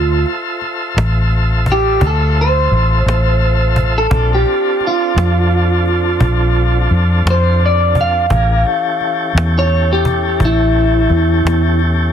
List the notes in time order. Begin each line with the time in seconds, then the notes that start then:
Already playing: D2 F4 A4 C5 E5
0.26 cajon slap
0.61 cajon slap
0.96 A1, cajon slap
1.31 cajon slap
1.66 cajon bass, cajon slap
1.72 G4
2.01 D2, cajon bass
2.07 A4
2.37 cajon slap
2.41 C5
2.71 A1, cajon slap
3.06 A1, cajon slap
3.42 cajon slap
3.76 cajon bass
3.98 A4
4.10 A#1 C4 D4 F4 A4, cajon bass
4.34 G4
4.46 cajon slap
4.81 cajon slap
4.87 F4
5.16 F2, cajon slap
5.51 cajon slap
5.85 cajon slap
5.88 cajon slap
6.20 A#1, cajon bass
6.55 cajon slap
6.90 F2, cajon slap
7.25 F2, cajon slap
7.30 C5
7.60 cajon slap
7.66 D5
7.95 cajon bass
8.01 F5
8.30 A1 D4 F4 G#4 A#4, cajon bass
8.65 E3 C#4 G4 A4, cajon slap
9.01 cajon slap
9.34 E2, cajon slap
9.59 C#5
9.70 cajon slap
9.93 G4
10.05 cajon bass
10.40 A1, cajon bass
10.45 E4
10.75 cajon slap
11.10 E2, cajon slap
11.45 E2, cajon slap
11.79 cajon slap